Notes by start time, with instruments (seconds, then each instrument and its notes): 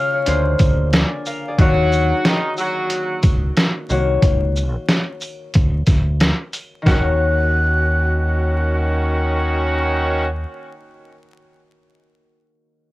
Already playing: harp C#3 G#3 F4 C#5 F5 G#5, flute F6
0.14 harp G#4 C#5
0.25 fingered electric bass D2, harp D3 A#3 G#4 C5, closed hi-hat, sleigh bells
0.59 fingered electric bass D2, kick, closed hi-hat, shaker, sleigh bells
0.93 harp D5 G#5, snare, closed hi-hat, sleigh bells
1.26 harp A#4 F5, shaker, sleigh bells
1.48 harp G#4 D5
1.58 fingered electric bass D#2, harp D#3 A#3 F#4 C#5, horn section F#3 F#4, kick, closed hi-hat, sleigh bells
1.92 shaker, sleigh bells
2.25 horn section D#3 D#4, snare, closed hi-hat, sleigh bells
2.57 horn section F#3 F#4, shaker, sleigh bells
2.90 closed hi-hat, sleigh bells
3.23 fingered electric bass C#2, kick, closed hi-hat, shaker, sleigh bells
3.57 snare, closed hi-hat, sleigh bells
3.89 fingered electric bass C2, harp D#3 A#3 F#4 C#5, shaker, sleigh bells
4.22 fingered electric bass C#2, kick, closed hi-hat, sleigh bells
4.56 shaker, sleigh bells
4.89 snare, closed hi-hat, sleigh bells
5.21 shaker, sleigh bells
5.54 fingered electric bass D2, kick, closed hi-hat, sleigh bells
5.87 fingered electric bass D2, kick, snare, closed hi-hat, shaker, sleigh bells
6.20 snare, closed hi-hat, sleigh bells
6.53 closed hi-hat, shaker, sleigh bells
6.82 harp D#3 A#3
6.86 fingered electric bass D#2, horn section D#3 C#4 F#4, harp F#4, flute F#6, kick, snare, sleigh bells
6.91 harp C#5